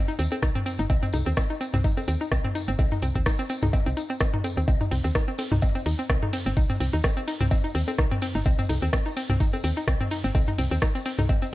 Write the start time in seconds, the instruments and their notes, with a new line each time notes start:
0.08 synth arpeggio sound D#4, tambourine
0.19 fm bass D#2, synth arpeggio sound C4, closed hi-hat, tambourine
0.32 synth arpeggio sound C4, tambourine, low bongo
0.42 fm bass C2, synth arpeggio sound D#4, kick, cross-stick, tambourine, high bongo
0.55 synth arpeggio sound C4, mid tom
0.66 synth arpeggio sound C4, closed hi-hat, tambourine
0.79 fm bass G1, synth arpeggio sound D#4, tambourine
0.89 fm bass C2, synth arpeggio sound C4, kick, tambourine, high bongo
1.03 synth arpeggio sound C4, mid tom, tambourine
1.13 fm bass C2, synth arpeggio sound D#4, closed hi-hat, tambourine, low bongo
1.26 fm bass D#2, synth arpeggio sound C4, tambourine
1.37 synth arpeggio sound C4, kick, cross-stick, tambourine, high bongo
1.50 synth arpeggio sound D#4, tambourine
1.61 synth arpeggio sound C4, closed hi-hat, tambourine
1.74 fm bass C2, synth arpeggio sound C4, mid tom, tambourine
1.84 synth arpeggio sound D#4, kick, tambourine, high bongo
1.97 synth arpeggio sound C4, tambourine, low bongo
2.08 fm bass D#2, synth arpeggio sound C4, closed hi-hat, tambourine
2.21 synth arpeggio sound D#4, tambourine
2.31 fm bass C2, synth arpeggio sound C4, kick, cross-stick, tambourine, high bongo
2.44 synth arpeggio sound C4, mid tom
2.55 synth arpeggio sound D#4, closed hi-hat, tambourine
2.68 fm bass G1, synth arpeggio sound C4, tambourine
2.79 fm bass C2, synth arpeggio sound C4, kick, tambourine, high bongo, low bongo
2.91 synth arpeggio sound D#4, mid tom, tambourine
3.02 fm bass C2, synth arpeggio sound C4, closed hi-hat, tambourine
3.15 fm bass D#2, synth arpeggio sound C4, kick, tambourine
3.26 synth arpeggio sound D#4, kick, cross-stick, tambourine, high bongo
3.39 synth arpeggio sound C4, tambourine
3.49 synth arpeggio sound C4, closed hi-hat, tambourine
3.63 fm bass C2, synth arpeggio sound D#4, mid tom, tambourine, low bongo
3.73 synth arpeggio sound C4, kick, tambourine, high bongo
3.86 fm bass C2, synth arpeggio sound C4, tambourine
3.97 synth arpeggio sound D#4, closed hi-hat, tambourine
4.10 synth arpeggio sound C4, tambourine
4.20 synth arpeggio sound C4, kick, cross-stick, tambourine, high bongo
4.34 synth arpeggio sound D#4, mid tom
4.44 synth arpeggio sound C4, closed hi-hat, tambourine, low bongo
4.57 fm bass D#2, synth arpeggio sound C4, tambourine
4.68 fm bass C2, synth arpeggio sound C4, kick, tambourine, high bongo
4.81 synth arpeggio sound D#4, mid tom, tambourine
4.91 fm bass C2, synth arpeggio sound C4, closed hi-hat, ride, tambourine
5.04 fm bass D#2, synth arpeggio sound C4, tambourine
5.15 synth arpeggio sound D#4, kick, cross-stick, tambourine, high bongo
5.28 synth arpeggio sound C4, tambourine
5.38 synth arpeggio sound C4, closed hi-hat, ride, tambourine, low bongo
5.52 fm bass C2, synth arpeggio sound D#4, mid tom, tambourine
5.62 synth arpeggio sound C4, kick, tambourine, high bongo
5.75 synth arpeggio sound C4, tambourine
5.86 fm bass D#2, synth arpeggio sound D#4, closed hi-hat, ride, tambourine
5.99 synth arpeggio sound C4, tambourine
6.10 fm bass C2, synth arpeggio sound C4, kick, cross-stick, tambourine, high bongo
6.23 synth arpeggio sound D#4, mid tom, low bongo
6.33 synth arpeggio sound C4, closed hi-hat, ride, tambourine
6.46 fm bass G1, synth arpeggio sound C4, tambourine
6.57 fm bass C2, synth arpeggio sound D#4, kick, tambourine, high bongo
6.70 synth arpeggio sound C4, mid tom, tambourine
6.80 fm bass C2, synth arpeggio sound C4, closed hi-hat, ride, tambourine
6.93 fm bass D#2, synth arpeggio sound D#4, tambourine
7.04 synth arpeggio sound C4, kick, cross-stick, tambourine, high bongo, low bongo
7.17 synth arpeggio sound C4, tambourine
7.28 synth arpeggio sound D#4, closed hi-hat, ride, tambourine
7.41 fm bass C2, synth arpeggio sound C4, mid tom, tambourine
7.51 synth arpeggio sound C4, kick, tambourine, high bongo
7.64 synth arpeggio sound D#4, tambourine
7.75 fm bass D#2, synth arpeggio sound C4, closed hi-hat, ride, tambourine
7.88 synth arpeggio sound C4, tambourine, low bongo
7.98 fm bass C2, synth arpeggio sound D#4, kick, cross-stick, tambourine, high bongo
8.11 synth arpeggio sound C4, mid tom
8.22 synth arpeggio sound C4, closed hi-hat, ride, tambourine
8.35 fm bass G1, synth arpeggio sound D#4, tambourine
8.45 fm bass C2, synth arpeggio sound C4, kick, tambourine, high bongo
8.59 synth arpeggio sound C4, mid tom, tambourine
8.69 fm bass C2, synth arpeggio sound D#4, closed hi-hat, ride, tambourine, low bongo
8.82 fm bass D#2, synth arpeggio sound C4, tambourine
8.93 synth arpeggio sound C4, kick, cross-stick, tambourine, high bongo
9.05 synth arpeggio sound D#4, tambourine
9.17 synth arpeggio sound C4, closed hi-hat, ride, tambourine
9.30 fm bass C2, synth arpeggio sound C4, mid tom, tambourine
9.40 synth arpeggio sound D#4, kick, tambourine, high bongo
9.53 synth arpeggio sound C4, tambourine, low bongo
9.64 fm bass D#2, synth arpeggio sound C4, closed hi-hat, ride, tambourine
9.76 synth arpeggio sound D#4, tambourine
9.88 fm bass C2, synth arpeggio sound C4, kick, cross-stick, tambourine, high bongo
10.00 synth arpeggio sound C4, mid tom
10.11 synth arpeggio sound D#4, closed hi-hat, ride, tambourine
10.24 fm bass G1, synth arpeggio sound C4, tambourine
10.35 fm bass C2, synth arpeggio sound C4, kick, tambourine, high bongo, low bongo
10.47 synth arpeggio sound D#4, mid tom, tambourine
10.58 fm bass C2, synth arpeggio sound C4, closed hi-hat, ride, tambourine
10.71 fm bass D#2, synth arpeggio sound C4, tambourine
10.82 synth arpeggio sound D#4, kick, cross-stick, tambourine, high bongo
10.95 synth arpeggio sound C4, tambourine
11.05 synth arpeggio sound C4, closed hi-hat, ride, tambourine
11.19 fm bass C2, synth arpeggio sound D#4, mid tom, tambourine, low bongo
11.29 synth arpeggio sound C4, kick, tambourine, high bongo
11.42 synth arpeggio sound C4, tambourine